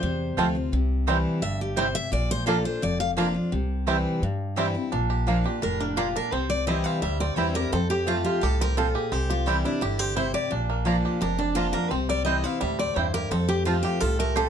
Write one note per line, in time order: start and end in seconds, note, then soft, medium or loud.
0.00 0.33 E2 medium
0.00 0.69 C3 medium
0.00 0.68 C5 medium
0.37 0.67 D2 medium
0.37 0.55 F3 medium
0.37 0.46 A3 medium
0.37 0.55 A3 loud
0.37 0.46 C4 loud
0.37 0.46 C4 medium
0.37 0.55 C4 loud
0.37 0.47 F4 medium
0.37 0.54 F4 loud
0.37 0.46 F4 medium
0.37 0.47 C5 loud
0.37 0.47 A5 loud
0.55 0.72 C4 soft
0.55 0.72 F4 medium
0.72 1.23 C2 medium
0.72 1.39 C3 loud
1.07 1.41 E3 medium
1.07 1.16 G3 medium
1.07 1.41 G3 medium
1.07 1.16 C4 medium
1.07 1.41 C4 medium
1.07 1.17 E4 medium
1.07 1.16 E4 medium
1.07 1.42 E4 loud
1.07 1.17 C5 loud
1.07 1.17 G5 loud
1.42 1.93 G1 medium
1.42 1.76 G2 medium
1.42 1.60 E5 loud
1.61 1.78 G4 medium
1.76 2.11 C3 medium
1.76 1.86 G3 medium
1.76 1.86 C4 loud
1.76 1.86 C4 medium
1.76 1.87 E4 loud
1.76 1.86 E4 medium
1.76 1.95 C5 medium
1.76 1.87 C5 medium
1.76 1.87 G5 loud
1.95 2.12 E5 loud
2.12 2.63 A#1 medium
2.12 2.79 A#2 medium
2.12 2.30 D5 medium
2.31 2.46 C5 loud
2.46 2.64 F3 medium
2.46 2.56 A#3 medium
2.46 2.64 A#3 medium
2.46 2.56 A#3 medium
2.46 2.65 D4 loud
2.46 2.56 D4 medium
2.46 2.56 F4 loud
2.46 2.63 F4 loud
2.46 2.64 A4 medium
2.46 2.57 D5 loud
2.46 2.57 A#5 loud
2.64 2.82 D4 medium
2.64 2.81 F4 medium
2.64 2.82 C5 loud
2.82 3.33 F1 medium
2.82 3.49 F2 medium
2.82 3.00 D5 medium
3.00 3.10 F5 loud
3.17 3.34 F3 medium
3.17 3.26 A#3 loud
3.17 3.35 A#3 medium
3.17 3.25 A#3 medium
3.17 3.35 D4 loud
3.17 3.26 D4 medium
3.17 3.27 F4 loud
3.17 3.33 F4 loud
3.17 3.27 D5 loud
3.17 3.27 A#5 loud
3.34 3.52 D4 medium
3.34 3.51 F4 medium
3.52 4.03 C2 loud
3.52 4.19 C3 medium
3.87 4.20 E3 medium
3.87 4.21 G3 medium
3.87 3.95 G3 medium
3.87 3.96 C4 medium
3.87 4.21 C4 medium
3.87 3.96 C4 medium
3.87 3.96 E4 medium
3.87 4.21 E4 medium
3.87 3.96 E4 medium
3.87 3.97 C5 loud
3.87 3.97 G5 loud
4.22 4.73 G2 medium
4.22 4.89 G2 medium
4.56 4.74 E3 medium
4.56 4.74 G3 loud
4.56 4.65 G3 medium
4.56 4.66 C4 medium
4.56 4.75 C4 loud
4.56 4.66 C4 medium
4.56 4.66 E4 loud
4.56 4.74 E4 loud
4.56 4.66 E4 medium
4.56 4.67 C5 loud
4.56 4.67 G5 loud
4.75 4.92 C4 soft
4.75 4.91 E4 medium
4.92 5.43 A#1 medium
4.92 5.59 A#2 medium
4.92 5.26 D4 medium
5.10 5.44 G4 medium
5.27 5.44 F3 medium
5.27 5.37 A#3 loud
5.27 5.45 A#3 medium
5.27 5.61 D4 medium
5.27 5.44 D4 medium
5.27 5.37 F4 medium
5.27 5.43 F4 medium
5.27 5.37 D5 medium
5.27 5.37 A#5 medium
5.44 5.62 D4 soft
5.44 5.61 F4 medium
5.44 5.94 G4 medium
5.62 6.13 F1 medium
5.62 5.95 A2 medium
5.62 6.12 D4 medium
5.62 5.80 A#4 medium
5.80 6.29 A#3 medium
5.80 5.97 D4 medium
5.97 6.31 A#2 medium
5.97 6.06 A#3 medium
5.97 6.14 F4 medium
5.97 6.06 F4 loud
5.97 6.33 G4 medium
5.97 6.07 D5 loud
5.97 6.07 A#5 loud
6.16 6.33 D4 medium
6.16 6.33 A#4 medium
6.32 6.83 C2 medium
6.32 6.99 C3 loud
6.32 6.85 C4 medium
6.32 6.50 C5 medium
6.50 6.67 D5 medium
6.67 7.00 E3 medium
6.67 7.01 G3 medium
6.67 6.76 C4 medium
6.67 7.01 C4 medium
6.67 6.77 E4 medium
6.67 7.17 E4 medium
6.67 7.01 E4 medium
6.67 6.77 C5 loud
6.67 6.84 D#5 medium
6.67 6.77 G5 loud
6.84 7.21 C4 medium
6.84 7.01 F5 loud
7.02 7.32 D2 medium
7.02 7.52 G3 medium
7.02 7.19 E5 medium
7.20 7.72 C4 medium
7.20 7.37 D5 medium
7.36 7.67 E2 medium
7.36 7.54 E3 medium
7.36 7.54 G3 loud
7.36 7.46 C4 medium
7.36 7.54 C4 medium
7.36 7.46 E4 medium
7.36 7.53 E4 medium
7.36 7.73 E4 medium
7.36 7.54 C5 medium
7.36 7.47 C5 loud
7.36 7.47 G5 loud
7.54 7.72 C4 medium
7.54 7.71 E4 medium
7.54 7.73 G4 medium
7.54 7.72 A#4 medium
7.72 8.39 F2 loud
7.72 8.23 F2 medium
7.72 8.61 C4 medium
7.72 7.90 A4 medium
7.90 8.07 G4 medium
7.90 8.39 G4 medium
8.07 8.40 F3 medium
8.07 8.40 A3 medium
8.07 8.57 A3 medium
8.07 8.16 C4 medium
8.07 8.41 C4 medium
8.07 8.16 F4 loud
8.07 8.25 F4 medium
8.07 8.41 F4 loud
8.07 8.17 C5 loud
8.07 8.17 A5 loud
8.24 8.74 F4 medium
8.24 8.43 G4 medium
8.41 8.93 C2 medium
8.41 8.75 A2 medium
8.41 8.92 G4 medium
8.41 8.60 A4 medium
8.61 9.09 C4 medium
8.61 8.77 A#4 loud
8.77 9.10 A#2 medium
8.77 8.86 C4 medium
8.77 8.86 F4 medium
8.77 9.12 F4 medium
8.77 8.95 A4 medium
8.77 8.87 C5 medium
8.77 8.87 A5 loud
8.95 9.12 G4 medium
8.95 9.12 G#4 medium
9.12 9.63 C2 medium
9.12 9.78 C3 medium
9.12 9.61 C4 medium
9.12 9.29 G4 medium
9.30 9.47 F4 medium
9.30 9.78 G4 medium
9.46 9.64 E3 medium
9.46 9.64 G3 medium
9.46 9.96 G3 medium
9.46 9.56 C4 medium
9.46 9.64 C4 medium
9.46 9.56 E4 loud
9.46 9.64 E4 medium
9.46 9.63 E4 medium
9.46 9.56 C5 loud
9.46 9.57 G5 loud
9.64 9.82 C4 medium
9.64 9.82 D4 medium
9.64 9.81 E4 medium
9.64 10.14 E4 medium
9.81 10.33 G1 medium
9.81 10.15 D3 medium
9.81 9.99 E4 medium
9.81 10.31 G4 medium
9.99 10.48 C4 medium
9.99 10.16 G4 medium
10.16 10.50 C3 medium
10.16 10.25 C4 medium
10.16 10.26 E4 loud
10.16 10.52 E4 medium
10.16 10.26 C5 loud
10.16 10.34 C5 medium
10.16 10.26 G5 loud
10.34 10.52 G4 medium
10.34 10.50 D5 medium
10.51 11.02 A#1 medium
10.51 11.18 A#2 loud
10.51 10.86 D4 medium
10.70 11.18 A#3 medium
10.85 11.19 F3 medium
10.85 10.95 A#3 medium
10.85 11.19 A#3 medium
10.85 11.20 D4 medium
10.85 11.21 D4 medium
10.85 10.95 F4 medium
10.85 11.20 F4 medium
10.85 10.96 D5 loud
10.85 10.96 A#5 loud
11.05 11.53 G4 medium
11.21 11.72 F1 medium
11.21 11.87 F2 medium
11.21 11.38 D4 medium
11.21 11.39 A#4 medium
11.39 11.56 D4 medium
11.39 11.88 D4 medium
11.55 11.91 D3 medium
11.55 11.73 F3 medium
11.55 11.65 A#3 medium
11.55 11.73 A#3 medium
11.55 11.73 D4 medium
11.55 11.73 F4 medium
11.55 11.65 F4 loud
11.55 11.72 F4 loud
11.55 11.65 D5 loud
11.55 11.66 A#5 loud
11.73 11.91 A#3 medium
11.73 11.91 D4 soft
11.73 11.90 F4 medium
11.73 11.91 A#4 medium
11.91 12.42 C2 medium
11.91 12.58 C3 medium
11.91 12.43 C4 medium
11.91 12.08 C5 medium
12.09 12.58 G3 medium
12.09 12.24 D5 loud
12.25 12.43 E3 medium
12.25 12.43 G3 medium
12.25 12.35 C4 medium
12.25 12.44 C4 medium
12.25 12.75 E4 medium
12.25 12.35 E4 loud
12.25 12.43 E4 medium
12.25 12.35 C5 loud
12.25 12.44 D#5 medium
12.25 12.36 G5 loud
12.44 12.78 C4 medium
12.44 12.61 C4 medium
12.44 12.60 E4 medium
12.44 12.60 F5 loud
12.61 12.91 D2 medium
12.61 12.94 A2 medium
12.61 13.10 G3 medium
12.61 12.78 E5 medium
12.79 13.31 C4 medium
12.79 12.97 D5 medium
12.96 13.26 E2 medium
12.96 13.29 G2 medium
12.96 13.05 C4 loud
12.96 13.05 E4 medium
12.96 13.31 E4 medium
12.96 13.05 C5 medium
12.96 13.14 C5 medium
12.96 13.05 G5 loud
13.14 13.31 G4 medium
13.14 13.30 A#4 loud
13.31 13.81 F2 medium
13.31 13.97 F2 medium
13.31 14.49 C4 medium
13.31 13.48 A4 medium
13.48 13.65 G4 loud
13.48 13.83 G4 medium
13.65 13.99 F3 medium
13.65 13.99 A3 loud
13.65 13.75 C4 medium
13.65 14.00 C4 loud
13.65 13.83 F4 medium
13.65 13.75 F4 medium
13.65 14.00 F4 medium
13.65 14.00 F4 loud
13.65 13.75 C5 medium
13.65 13.76 A5 loud
13.83 14.00 G4 medium
13.83 14.33 G4 medium
14.00 14.49 C2 medium
14.00 14.34 A2 medium
14.00 14.49 F4 medium
14.00 14.18 A4 medium
14.19 14.49 A3 medium
14.19 14.36 A#4 loud
14.35 14.49 A#2 medium
14.35 14.45 C4 loud
14.35 14.45 F4 loud
14.35 14.49 G4 medium
14.35 14.49 A4 medium
14.35 14.45 C5 loud
14.35 14.45 A5 loud